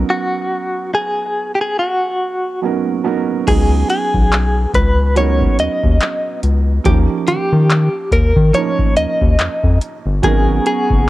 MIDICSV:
0, 0, Header, 1, 6, 480
1, 0, Start_track
1, 0, Tempo, 845070
1, 53, Time_signature, 4, 2, 24, 8
1, 6301, End_track
2, 0, Start_track
2, 0, Title_t, "Analog synth pad"
2, 0, Program_c, 0, 89
2, 5810, Note_on_c, 0, 59, 84
2, 5810, Note_on_c, 0, 82, 75
2, 5810, Note_on_c, 0, 85, 89
2, 5811, Note_on_c, 0, 78, 75
2, 6301, Note_off_c, 0, 59, 0
2, 6301, Note_off_c, 0, 78, 0
2, 6301, Note_off_c, 0, 82, 0
2, 6301, Note_off_c, 0, 85, 0
2, 6301, End_track
3, 0, Start_track
3, 0, Title_t, "Clean electric guitar"
3, 0, Program_c, 1, 27
3, 57, Note_on_c, 1, 66, 87
3, 512, Note_off_c, 1, 66, 0
3, 537, Note_on_c, 1, 68, 98
3, 857, Note_off_c, 1, 68, 0
3, 882, Note_on_c, 1, 67, 69
3, 914, Note_off_c, 1, 67, 0
3, 916, Note_on_c, 1, 68, 98
3, 1016, Note_off_c, 1, 68, 0
3, 1018, Note_on_c, 1, 66, 86
3, 1473, Note_off_c, 1, 66, 0
3, 1976, Note_on_c, 1, 68, 84
3, 2208, Note_off_c, 1, 68, 0
3, 2215, Note_on_c, 1, 68, 88
3, 2671, Note_off_c, 1, 68, 0
3, 2698, Note_on_c, 1, 71, 86
3, 2936, Note_off_c, 1, 71, 0
3, 2939, Note_on_c, 1, 73, 95
3, 3159, Note_off_c, 1, 73, 0
3, 3179, Note_on_c, 1, 75, 96
3, 3633, Note_off_c, 1, 75, 0
3, 3896, Note_on_c, 1, 67, 77
3, 3960, Note_off_c, 1, 67, 0
3, 4135, Note_on_c, 1, 67, 88
3, 4613, Note_off_c, 1, 67, 0
3, 4615, Note_on_c, 1, 70, 86
3, 4853, Note_on_c, 1, 73, 101
3, 4861, Note_off_c, 1, 70, 0
3, 5092, Note_off_c, 1, 73, 0
3, 5094, Note_on_c, 1, 75, 95
3, 5551, Note_off_c, 1, 75, 0
3, 5819, Note_on_c, 1, 68, 83
3, 6052, Note_off_c, 1, 68, 0
3, 6059, Note_on_c, 1, 68, 92
3, 6301, Note_off_c, 1, 68, 0
3, 6301, End_track
4, 0, Start_track
4, 0, Title_t, "Felt piano"
4, 0, Program_c, 2, 0
4, 0, Control_c, 2, 64, 127
4, 0, Note_on_c, 2, 54, 73
4, 0, Note_on_c, 2, 59, 69
4, 0, Note_on_c, 2, 61, 73
4, 0, Note_on_c, 2, 63, 69
4, 0, Note_on_c, 2, 70, 80
4, 597, Note_off_c, 2, 54, 0
4, 599, Note_off_c, 2, 59, 0
4, 602, Note_off_c, 2, 61, 0
4, 604, Note_off_c, 2, 63, 0
4, 607, Note_off_c, 2, 70, 0
4, 1486, Note_on_c, 2, 54, 62
4, 1492, Note_on_c, 2, 59, 56
4, 1497, Note_on_c, 2, 61, 59
4, 1502, Note_on_c, 2, 63, 55
4, 1507, Note_on_c, 2, 70, 71
4, 1691, Note_off_c, 2, 54, 0
4, 1694, Note_off_c, 2, 59, 0
4, 1697, Note_off_c, 2, 61, 0
4, 1699, Note_off_c, 2, 63, 0
4, 1702, Note_off_c, 2, 70, 0
4, 1725, Note_on_c, 2, 54, 84
4, 1729, Note_on_c, 2, 59, 74
4, 1735, Note_on_c, 2, 61, 78
4, 1739, Note_on_c, 2, 63, 78
4, 1745, Note_on_c, 2, 70, 87
4, 1931, Note_off_c, 2, 54, 0
4, 1933, Note_off_c, 2, 59, 0
4, 1936, Note_off_c, 2, 61, 0
4, 1938, Note_off_c, 2, 63, 0
4, 1941, Note_off_c, 2, 70, 0
4, 1965, Note_on_c, 2, 54, 66
4, 1971, Note_on_c, 2, 59, 60
4, 1975, Note_on_c, 2, 61, 62
4, 1980, Control_c, 2, 64, 0
4, 1981, Note_on_c, 2, 63, 65
4, 1985, Note_on_c, 2, 68, 81
4, 2084, Control_c, 2, 64, 127
4, 2756, Note_off_c, 2, 54, 0
4, 2759, Note_off_c, 2, 59, 0
4, 2761, Note_off_c, 2, 61, 0
4, 2764, Note_off_c, 2, 63, 0
4, 2766, Note_off_c, 2, 68, 0
4, 2926, Note_on_c, 2, 54, 70
4, 2931, Note_on_c, 2, 59, 61
4, 2936, Note_on_c, 2, 61, 65
4, 2940, Note_on_c, 2, 63, 60
4, 2946, Note_on_c, 2, 70, 76
4, 3716, Note_off_c, 2, 54, 0
4, 3719, Note_off_c, 2, 59, 0
4, 3722, Note_off_c, 2, 61, 0
4, 3723, Note_off_c, 2, 63, 0
4, 3726, Note_off_c, 2, 70, 0
4, 3886, Note_on_c, 2, 53, 71
4, 3892, Note_on_c, 2, 58, 66
4, 3895, Note_on_c, 2, 61, 68
4, 3901, Control_c, 2, 64, 0
4, 3901, Note_on_c, 2, 63, 63
4, 3906, Note_on_c, 2, 67, 76
4, 3991, Control_c, 2, 64, 127
4, 4676, Note_off_c, 2, 53, 0
4, 4679, Note_off_c, 2, 58, 0
4, 4681, Note_off_c, 2, 61, 0
4, 4684, Note_off_c, 2, 63, 0
4, 4686, Note_off_c, 2, 67, 0
4, 4846, Note_on_c, 2, 53, 65
4, 4851, Note_on_c, 2, 58, 67
4, 4856, Note_on_c, 2, 61, 62
4, 4862, Note_on_c, 2, 63, 65
4, 4867, Note_on_c, 2, 70, 76
4, 5637, Note_off_c, 2, 53, 0
4, 5639, Note_off_c, 2, 58, 0
4, 5642, Note_off_c, 2, 61, 0
4, 5644, Note_off_c, 2, 63, 0
4, 5647, Note_off_c, 2, 70, 0
4, 5806, Note_on_c, 2, 54, 73
4, 5811, Note_on_c, 2, 59, 65
4, 5816, Note_on_c, 2, 61, 65
4, 5821, Control_c, 2, 64, 0
4, 5821, Note_on_c, 2, 63, 64
4, 5826, Note_on_c, 2, 70, 82
4, 5931, Control_c, 2, 64, 127
4, 6301, Note_off_c, 2, 54, 0
4, 6301, Note_off_c, 2, 59, 0
4, 6301, Note_off_c, 2, 61, 0
4, 6301, Note_off_c, 2, 63, 0
4, 6301, Note_off_c, 2, 70, 0
4, 6301, End_track
5, 0, Start_track
5, 0, Title_t, "Analog synth bass"
5, 0, Program_c, 3, 38
5, 1974, Note_on_c, 3, 37, 103
5, 2181, Note_off_c, 3, 37, 0
5, 2353, Note_on_c, 3, 35, 88
5, 2648, Note_off_c, 3, 35, 0
5, 2691, Note_on_c, 3, 37, 94
5, 3107, Note_off_c, 3, 37, 0
5, 3175, Note_on_c, 3, 39, 47
5, 3230, Note_off_c, 3, 39, 0
5, 3316, Note_on_c, 3, 39, 87
5, 3401, Note_off_c, 3, 39, 0
5, 3654, Note_on_c, 3, 37, 77
5, 3861, Note_off_c, 3, 37, 0
5, 3894, Note_on_c, 3, 39, 107
5, 4014, Note_off_c, 3, 39, 0
5, 4135, Note_on_c, 3, 51, 46
5, 4190, Note_off_c, 3, 51, 0
5, 4274, Note_on_c, 3, 51, 89
5, 4481, Note_off_c, 3, 51, 0
5, 4610, Note_on_c, 3, 39, 88
5, 4732, Note_off_c, 3, 39, 0
5, 4749, Note_on_c, 3, 51, 94
5, 4838, Note_off_c, 3, 51, 0
5, 5095, Note_on_c, 3, 39, 49
5, 5150, Note_off_c, 3, 39, 0
5, 5235, Note_on_c, 3, 39, 92
5, 5321, Note_off_c, 3, 39, 0
5, 5334, Note_on_c, 3, 41, 53
5, 5390, Note_off_c, 3, 41, 0
5, 5473, Note_on_c, 3, 41, 89
5, 5560, Note_off_c, 3, 41, 0
5, 5713, Note_on_c, 3, 31, 94
5, 5800, Note_off_c, 3, 31, 0
5, 5814, Note_on_c, 3, 32, 112
5, 6021, Note_off_c, 3, 32, 0
5, 6194, Note_on_c, 3, 30, 89
5, 6301, Note_off_c, 3, 30, 0
5, 6301, End_track
6, 0, Start_track
6, 0, Title_t, "Drums"
6, 1973, Note_on_c, 9, 42, 73
6, 1973, Note_on_c, 9, 49, 95
6, 1974, Note_on_c, 9, 36, 122
6, 2030, Note_off_c, 9, 36, 0
6, 2030, Note_off_c, 9, 42, 0
6, 2030, Note_off_c, 9, 49, 0
6, 2213, Note_on_c, 9, 42, 64
6, 2270, Note_off_c, 9, 42, 0
6, 2353, Note_on_c, 9, 36, 94
6, 2409, Note_off_c, 9, 36, 0
6, 2456, Note_on_c, 9, 42, 58
6, 2458, Note_on_c, 9, 39, 114
6, 2513, Note_off_c, 9, 42, 0
6, 2515, Note_off_c, 9, 39, 0
6, 2690, Note_on_c, 9, 36, 91
6, 2694, Note_on_c, 9, 42, 79
6, 2747, Note_off_c, 9, 36, 0
6, 2751, Note_off_c, 9, 42, 0
6, 2932, Note_on_c, 9, 42, 65
6, 2989, Note_off_c, 9, 42, 0
6, 3073, Note_on_c, 9, 36, 83
6, 3130, Note_off_c, 9, 36, 0
6, 3174, Note_on_c, 9, 42, 77
6, 3230, Note_off_c, 9, 42, 0
6, 3315, Note_on_c, 9, 36, 93
6, 3371, Note_off_c, 9, 36, 0
6, 3412, Note_on_c, 9, 42, 63
6, 3417, Note_on_c, 9, 39, 107
6, 3468, Note_off_c, 9, 42, 0
6, 3474, Note_off_c, 9, 39, 0
6, 3653, Note_on_c, 9, 42, 65
6, 3709, Note_off_c, 9, 42, 0
6, 3892, Note_on_c, 9, 42, 75
6, 3893, Note_on_c, 9, 36, 120
6, 3949, Note_off_c, 9, 42, 0
6, 3950, Note_off_c, 9, 36, 0
6, 4133, Note_on_c, 9, 42, 64
6, 4190, Note_off_c, 9, 42, 0
6, 4375, Note_on_c, 9, 42, 59
6, 4377, Note_on_c, 9, 39, 116
6, 4432, Note_off_c, 9, 42, 0
6, 4434, Note_off_c, 9, 39, 0
6, 4610, Note_on_c, 9, 36, 87
6, 4612, Note_on_c, 9, 42, 76
6, 4666, Note_off_c, 9, 36, 0
6, 4669, Note_off_c, 9, 42, 0
6, 4748, Note_on_c, 9, 36, 93
6, 4805, Note_off_c, 9, 36, 0
6, 4851, Note_on_c, 9, 42, 69
6, 4907, Note_off_c, 9, 42, 0
6, 4992, Note_on_c, 9, 36, 85
6, 5049, Note_off_c, 9, 36, 0
6, 5093, Note_on_c, 9, 42, 77
6, 5150, Note_off_c, 9, 42, 0
6, 5234, Note_on_c, 9, 36, 91
6, 5291, Note_off_c, 9, 36, 0
6, 5332, Note_on_c, 9, 42, 64
6, 5338, Note_on_c, 9, 39, 105
6, 5389, Note_off_c, 9, 42, 0
6, 5395, Note_off_c, 9, 39, 0
6, 5473, Note_on_c, 9, 36, 83
6, 5529, Note_off_c, 9, 36, 0
6, 5574, Note_on_c, 9, 42, 65
6, 5631, Note_off_c, 9, 42, 0
6, 5813, Note_on_c, 9, 36, 121
6, 5813, Note_on_c, 9, 42, 80
6, 5870, Note_off_c, 9, 36, 0
6, 5870, Note_off_c, 9, 42, 0
6, 6054, Note_on_c, 9, 42, 66
6, 6111, Note_off_c, 9, 42, 0
6, 6193, Note_on_c, 9, 36, 95
6, 6250, Note_off_c, 9, 36, 0
6, 6301, End_track
0, 0, End_of_file